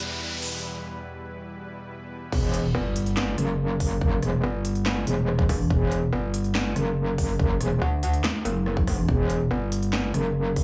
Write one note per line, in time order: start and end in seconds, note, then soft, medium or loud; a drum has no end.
0.00 2.28 E2 medium
0.00 2.28 B2 medium
0.00 2.28 G3 medium
0.00 2.28 E4 medium
0.00 2.28 B4 medium
0.00 closed hi-hat medium
0.00 riser medium
0.42 open hi-hat medium
2.32 2.73 E1 loud
2.32 kick loud
2.32 crash loud
2.32 impact medium
2.54 closed hi-hat medium
2.75 3.36 G1 loud
2.96 closed hi-hat medium
3.06 closed hi-hat soft
3.17 snare loud
3.17 clap medium
3.38 4.21 F#1 loud
3.38 cross-stick medium
3.38 closed hi-hat medium
3.80 kick medium
3.80 open hi-hat medium
4.01 kick loud
4.23 4.42 E1 loud
4.23 cross-stick medium
4.23 closed hi-hat medium
4.44 5.05 G1 medium
4.65 closed hi-hat medium
4.75 closed hi-hat soft
4.86 cross-stick medium
4.86 snare loud
4.86 clap medium
5.07 5.48 E1 loud
5.07 closed hi-hat medium
5.28 cross-stick medium
5.39 kick loud
5.49 5.69 E1 loud
5.49 kick medium
5.49 cross-stick medium
5.49 open hi-hat medium
5.70 6.11 E1 loud
5.70 kick loud
5.92 closed hi-hat medium
6.13 6.74 G1 loud
6.34 closed hi-hat medium
6.44 closed hi-hat soft
6.55 snare loud
6.55 clap medium
6.76 7.59 F#1 loud
6.76 cross-stick medium
6.76 closed hi-hat medium
7.18 kick medium
7.18 open hi-hat medium
7.39 kick loud
7.61 7.80 E1 loud
7.61 cross-stick medium
7.61 closed hi-hat medium
7.82 8.22 D2 loud
8.03 closed hi-hat medium
8.14 closed hi-hat soft
8.24 cross-stick medium
8.24 snare loud
8.24 clap medium
8.45 8.89 F#1 loud
8.45 closed hi-hat medium
8.66 cross-stick medium
8.77 kick loud
8.87 9.07 F1 loud
8.87 kick medium
8.87 cross-stick medium
8.87 open hi-hat medium
9.09 9.49 E1 loud
9.09 kick loud
9.30 closed hi-hat medium
9.51 10.12 G1 medium
9.72 closed hi-hat medium
9.83 closed hi-hat soft
9.93 snare loud
9.93 clap medium
10.14 10.64 F#1 loud
10.14 cross-stick medium
10.14 closed hi-hat medium
10.56 kick medium
10.56 open hi-hat medium